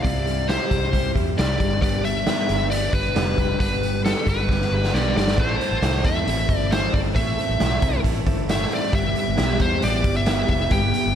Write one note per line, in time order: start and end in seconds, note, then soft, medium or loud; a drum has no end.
0.03 0.57 C2 medium
0.03 0.26 C3 medium
0.03 0.26 G3 medium
0.03 0.26 C4 medium
0.03 0.26 E4 medium
0.03 0.25 G4 medium
0.03 0.49 D5 medium
0.03 kick loud
0.03 closed hi-hat medium
0.25 0.92 G3 medium
0.25 0.47 C4 soft
0.25 0.48 E4 soft
0.25 0.48 G4 soft
0.25 closed hi-hat soft
0.48 0.70 C3 medium
0.48 0.71 G3 medium
0.48 0.71 C4 medium
0.48 0.70 E4 medium
0.48 0.69 G4 medium
0.48 1.11 C5 medium
0.48 snare medium
0.48 closed hi-hat medium
0.70 1.09 C2 medium
0.70 0.92 C4 soft
0.70 0.93 E4 soft
0.70 0.93 G4 soft
0.70 kick medium
0.70 closed hi-hat medium
0.92 1.15 G3 medium
0.92 1.15 C4 medium
0.92 1.14 E4 soft
0.92 1.13 G4 medium
0.92 kick medium
0.92 closed hi-hat medium
1.14 1.35 E2 medium
1.14 1.36 C4 soft
1.14 1.37 E4 soft
1.14 1.37 G4 medium
1.14 kick medium
1.14 closed hi-hat medium
1.37 1.57 C2 medium
1.37 1.59 C3 medium
1.37 1.60 G3 medium
1.37 1.60 C4 medium
1.37 1.60 E4 medium
1.37 1.58 G4 medium
1.37 1.81 D5 medium
1.37 snare loud
1.37 closed hi-hat medium
1.59 2.26 G1 medium
1.59 1.80 G2 medium
1.59 1.82 G3 soft
1.59 1.82 B3 soft
1.59 1.82 D4 soft
1.59 1.82 G4 soft
1.59 kick medium
1.59 closed hi-hat medium
1.82 2.04 G2 medium
1.82 2.04 D3 medium
1.82 2.04 G3 medium
1.82 2.04 B3 medium
1.82 2.03 D4 medium
1.82 2.02 G4 medium
1.82 2.03 D5 medium
1.82 kick loud
1.82 closed hi-hat medium
2.03 2.25 G3 soft
2.03 2.26 B3 soft
2.03 2.26 D4 soft
2.03 2.26 G4 soft
2.03 2.67 E5 medium
2.03 closed hi-hat medium
2.26 2.48 G2 medium
2.26 2.49 D3 medium
2.26 2.49 G3 medium
2.26 2.48 B3 medium
2.26 2.48 D4 medium
2.26 2.46 G4 medium
2.26 snare medium
2.26 closed hi-hat medium
2.47 2.87 G1 medium
2.47 2.69 G3 soft
2.47 2.70 B3 soft
2.47 2.71 D4 soft
2.47 2.70 G4 soft
2.47 closed hi-hat medium
2.69 4.46 D3 medium
2.69 2.93 G3 medium
2.69 2.92 B3 medium
2.69 2.92 D4 medium
2.69 2.90 G4 medium
2.69 2.93 D5 medium
2.69 closed hi-hat medium
2.92 3.12 G1 medium
2.92 3.14 G3 soft
2.92 3.14 B3 soft
2.92 3.14 D4 soft
2.92 3.15 G4 soft
2.92 3.59 B4 medium
2.92 kick medium
2.92 closed hi-hat medium
3.14 3.34 F1 medium
3.14 3.37 G2 medium
3.14 3.37 D3 medium
3.14 3.37 G3 medium
3.14 3.37 B3 medium
3.14 3.37 D4 medium
3.14 3.37 G4 medium
3.14 snare loud
3.14 closed hi-hat medium
3.38 3.57 F1 medium
3.38 3.60 G3 soft
3.38 3.60 B3 soft
3.38 3.60 D4 soft
3.38 3.60 G4 soft
3.38 kick medium
3.38 closed hi-hat medium
3.60 4.13 G1 medium
3.60 3.82 G2 medium
3.60 3.82 D3 medium
3.60 3.83 G3 medium
3.60 3.83 B3 medium
3.60 3.83 D4 medium
3.60 3.82 G4 medium
3.60 4.01 B4 medium
3.60 kick loud
3.60 closed hi-hat medium
3.81 5.14 G3 medium
3.81 4.05 B3 soft
3.81 4.05 D4 soft
3.81 4.05 G4 soft
3.81 closed hi-hat medium
3.85 4.04 G3 soft
4.03 4.27 G2 medium
4.03 4.27 D3 medium
4.03 4.27 G3 medium
4.03 4.27 B3 medium
4.03 4.14 C4 medium
4.03 4.27 D4 medium
4.03 4.25 G4 medium
4.03 4.27 A4 medium
4.03 snare medium
4.03 closed hi-hat medium
4.14 4.68 D4 soft
4.26 4.64 G1 medium
4.26 4.47 G3 soft
4.26 4.49 B3 soft
4.26 4.49 D4 soft
4.26 4.48 G4 soft
4.26 5.13 B4 medium
4.26 kick medium
4.26 closed hi-hat medium
4.47 5.41 D3 medium
4.47 4.71 G3 medium
4.47 4.71 B3 medium
4.47 4.71 D4 medium
4.47 kick medium
4.47 snare soft
4.52 4.70 G4 medium
4.61 snare soft
4.71 4.90 G1 medium
4.71 4.93 G3 soft
4.71 4.93 B3 soft
4.71 4.94 D4 soft
4.71 4.93 G4 soft
4.84 snare medium
4.93 5.12 B1 medium
4.93 5.15 G2 medium
4.93 5.15 D3 medium
4.93 5.16 G3 medium
4.93 5.16 B3 medium
4.93 5.15 D4 medium
4.93 5.14 G4 medium
4.93 5.16 D5 medium
4.93 snare medium
5.15 5.34 G1 medium
5.15 5.37 G3 soft
5.15 5.38 B3 soft
5.15 5.38 D4 soft
5.15 5.37 G4 soft
5.15 5.39 D5 medium
5.15 snare medium
5.28 snare medium
5.37 5.57 A1 medium
5.37 5.60 A2 medium
5.37 5.60 E3 medium
5.37 5.60 A3 medium
5.37 5.60 C4 medium
5.37 5.59 E4 medium
5.37 5.58 A4 medium
5.37 6.07 C5 medium
5.37 kick loud
5.37 crash medium
5.60 5.81 A3 soft
5.60 5.81 C4 soft
5.60 5.82 E4 soft
5.60 5.82 A4 medium
5.60 closed hi-hat medium
5.71 5.80 A1 medium
5.81 6.01 C2 medium
5.81 6.04 A2 medium
5.81 6.04 E3 medium
5.81 6.04 A3 medium
5.81 6.04 C4 medium
5.81 6.03 E4 medium
5.81 6.02 A4 medium
5.81 snare loud
5.81 closed hi-hat medium
6.03 6.24 E2 medium
6.03 6.24 A3 soft
6.03 6.26 C4 soft
6.03 6.26 E4 soft
6.03 6.26 A4 soft
6.03 6.56 E5 loud
6.03 kick medium
6.03 closed hi-hat medium
6.26 6.46 A1 medium
6.26 8.04 E3 medium
6.26 6.48 A3 medium
6.26 6.48 C4 medium
6.26 6.48 E4 medium
6.26 6.47 A4 medium
6.26 closed hi-hat medium
6.48 6.87 G1 medium
6.48 6.70 A3 soft
6.48 6.70 C4 soft
6.48 6.70 E4 soft
6.48 6.71 A4 medium
6.48 kick medium
6.48 closed hi-hat medium
6.56 6.73 D5 loud
6.70 6.93 A2 medium
6.70 6.93 E3 medium
6.70 6.93 A3 medium
6.70 6.93 C4 medium
6.70 6.93 E4 medium
6.70 6.92 A4 medium
6.70 6.94 C5 medium
6.70 snare loud
6.70 closed hi-hat medium
6.93 7.12 G1 medium
6.93 7.15 A3 soft
6.93 7.16 C4 soft
6.93 7.16 E4 soft
6.93 7.15 A4 medium
6.93 6.99 D5 medium
6.93 kick medium
6.93 open hi-hat medium
7.16 7.35 A1 medium
7.16 7.38 A2 medium
7.16 7.38 E3 medium
7.16 7.38 A3 medium
7.16 7.38 C4 medium
7.16 7.36 E4 medium
7.16 7.35 A4 medium
7.16 8.00 E5 medium
7.16 kick loud
7.16 closed hi-hat loud
7.37 7.58 A3 soft
7.37 7.59 C4 soft
7.37 7.59 E4 soft
7.37 7.59 A4 soft
7.37 closed hi-hat medium
7.49 7.58 A1 medium
7.59 7.79 B1 medium
7.59 7.82 A2 medium
7.59 7.82 E3 medium
7.59 7.82 A3 medium
7.59 7.81 C4 medium
7.59 7.81 E4 medium
7.59 7.80 A4 medium
7.59 snare loud
7.59 closed hi-hat medium
7.81 8.01 C2 medium
7.81 8.01 A3 soft
7.81 8.02 C4 medium
7.81 8.03 E4 soft
7.81 8.04 A4 medium
7.81 kick medium
7.81 closed hi-hat medium
8.02 8.23 A1 medium
8.02 8.92 E3 medium
8.02 8.25 A3 medium
8.02 8.26 C4 medium
8.02 8.25 E4 medium
8.02 8.24 A4 medium
8.02 kick medium
8.02 closed hi-hat medium
8.26 8.64 G1 loud
8.26 8.47 A3 soft
8.26 8.48 C4 medium
8.26 8.48 E4 medium
8.26 8.48 A4 medium
8.26 kick medium
8.26 closed hi-hat medium
8.48 8.71 A2 medium
8.48 8.71 E3 medium
8.48 8.71 A3 medium
8.48 8.71 C4 medium
8.48 8.70 E4 medium
8.48 8.69 A4 medium
8.48 8.73 E5 medium
8.48 snare loud
8.48 closed hi-hat medium
8.70 8.92 A3 soft
8.70 8.92 C4 soft
8.70 8.92 E4 soft
8.70 8.93 A4 medium
8.70 open hi-hat medium
8.74 8.95 D5 medium
8.91 9.12 G1 loud
8.91 9.15 G2 medium
8.91 9.15 E3 medium
8.91 9.15 G3 medium
8.91 9.14 B3 medium
8.91 9.14 E4 medium
8.91 9.13 G4 medium
8.91 9.63 E5 medium
8.91 kick loud
8.91 closed hi-hat medium
9.14 9.34 G3 soft
9.14 9.35 B3 soft
9.14 9.36 E4 soft
9.14 9.36 G4 medium
9.14 closed hi-hat medium
9.28 9.37 G1 medium
9.35 9.57 B1 medium
9.35 9.59 G2 medium
9.35 9.59 E3 medium
9.35 9.59 G3 medium
9.35 9.59 B3 medium
9.35 9.58 E4 medium
9.35 9.57 G4 medium
9.35 snare loud
9.35 closed hi-hat medium
9.58 9.79 E2 medium
9.58 9.78 G3 soft
9.58 9.80 B3 soft
9.58 9.71 D4 medium
9.58 9.80 E4 soft
9.58 9.81 G4 soft
9.58 9.84 C5 medium
9.58 kick medium
9.58 closed hi-hat medium
9.71 10.49 E4 soft
9.80 10.02 A1 medium
9.80 10.03 G3 medium
9.80 10.03 B3 medium
9.80 10.02 E4 medium
9.80 10.01 G4 medium
9.80 closed hi-hat medium
9.84 10.16 D5 medium
10.02 10.43 G1 medium
10.02 10.25 G3 soft
10.02 10.25 B3 soft
10.02 10.25 E4 soft
10.02 10.25 G4 medium
10.02 kick loud
10.02 closed hi-hat medium
10.17 10.48 E5 loud
10.25 10.48 G2 medium
10.25 10.49 E3 medium
10.25 10.49 G3 medium
10.25 10.48 B3 medium
10.25 10.48 E4 medium
10.25 10.47 G4 medium
10.25 snare loud
10.25 closed hi-hat medium
10.48 10.68 F1 medium
10.48 10.70 G3 soft
10.48 10.71 B3 soft
10.48 10.71 E4 soft
10.48 10.71 G4 soft
10.48 10.72 E5 medium
10.48 kick medium
10.48 open hi-hat medium
10.71 10.91 G1 medium
10.71 10.93 G2 medium
10.71 10.94 E3 medium
10.71 10.94 G3 medium
10.71 10.94 B3 medium
10.71 10.94 E4 medium
10.71 10.92 G4 medium
10.71 11.15 G5 loud
10.71 kick loud
10.71 closed hi-hat medium
10.94 11.15 G3 soft
10.94 11.15 B3 soft
10.94 11.15 E4 soft
10.94 11.15 G4 soft
10.94 closed hi-hat medium
11.06 11.15 G1 medium